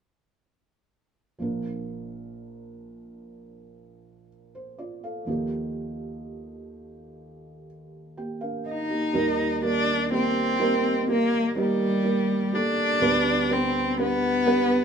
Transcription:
1.39 A#1 A#2 F3 A#3 D4 A#4
4.55 C5
4.78 F4 D5
5.04 A4 F5
5.25 D#2 F3 A#3 D#4 G4
8.17 A#3 G4 G5
8.41 D4 A#4 F5
8.66 D#4 D#5
8.90 A#3 G4
9.13 D#2 D#3 G3 A#3 D#4 A#4
9.62 G3 A#3 D4 G4 A#4
10.11 G3 A#3 C4 D#4 A#4
10.59 G3 A#3 D#4 A#4
11.08 G3 A#3 D#4 A#4
11.56 G3 A#3 D#4 A#4
12.04 G3 A#3 D#4 A#4
12.52 G3 A#3 D4 G4 A4
13.00 D2 G3 B3 D4 B4
13.49 G3 C4 D4 B4
13.98 G3 B3 D4 B4
14.45 G3 B3 D4 B4

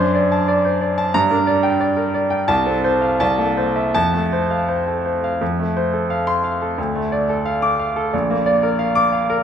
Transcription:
Already playing: F#2 D4 C5 C6
0.15 D5
0.32 A5
0.48 D5
0.65 C5
0.81 D5
0.98 A5
1.14 G2 A#5
1.31 D4 A#4
1.47 D5
1.63 G5
1.80 D5
1.97 A#4
2.14 D5
2.30 G5
2.48 C2 A5
2.66 C4 A4
2.84 C5
3.02 F5
3.20 C2 A5
3.38 A#3 A4
3.57 C5
3.76 E5
3.94 F2 A5
4.13 A3 A4
4.32 C5
4.51 F5
4.68 C5
4.87 A4
5.05 C5
5.24 F5
5.41 F2
5.59 A3
5.77 C5
5.93 A4
6.10 F5
6.27 C6
6.44 F5
6.62 A4
6.78 D2
6.95 A3
7.12 D5
7.29 A4
7.46 F5
7.62 D6
7.79 F5
7.96 A4
8.13 A#1
8.30 A#3
8.46 D5
8.63 A#4
8.79 F5
8.95 D6
9.12 F5
9.30 A#4

